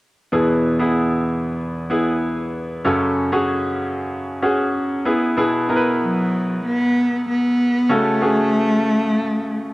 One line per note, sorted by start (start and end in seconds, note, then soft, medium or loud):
0.32 2.81 E2 medium
0.32 2.81 B2 medium
0.32 0.70 B3 medium
0.32 0.70 E4 medium
0.32 0.70 G#4 medium
0.79 1.67 B3 medium
0.79 1.67 E4 medium
0.79 1.67 G#4 medium
1.90 2.65 B3 medium
1.90 2.65 E4 medium
1.90 2.66 G#4 medium
2.84 5.02 F#2 medium
2.84 5.02 C#3 medium
2.84 3.22 C#4 medium
2.84 3.23 F#4 medium
2.84 3.23 A4 medium
3.32 4.20 C#4 medium
3.32 4.20 F#4 medium
3.32 4.20 G#4 medium
4.42 5.06 C#4 medium
4.42 5.06 F#4 medium
4.42 5.05 G#4 medium
5.05 5.31 B3 medium
5.05 5.31 E4 medium
5.05 5.31 G#4 medium
5.37 6.28 B2 medium
5.37 5.62 B3 medium
5.37 5.62 E4 medium
5.37 5.63 G#4 medium
5.69 6.69 B3 medium
5.69 6.69 E4 medium
5.69 5.76 A#4 medium
5.76 6.73 B4 medium
6.02 6.61 F#3 medium
6.65 7.24 B3 medium
7.29 7.94 B3 medium
7.89 8.81 C#3 medium
7.89 9.73 A3 loud
7.89 8.15 C#4 medium
7.89 8.15 F#4 medium
7.89 8.15 A4 medium
8.21 9.22 C#4 medium
8.21 9.22 F#4 medium
8.21 9.22 G#4 medium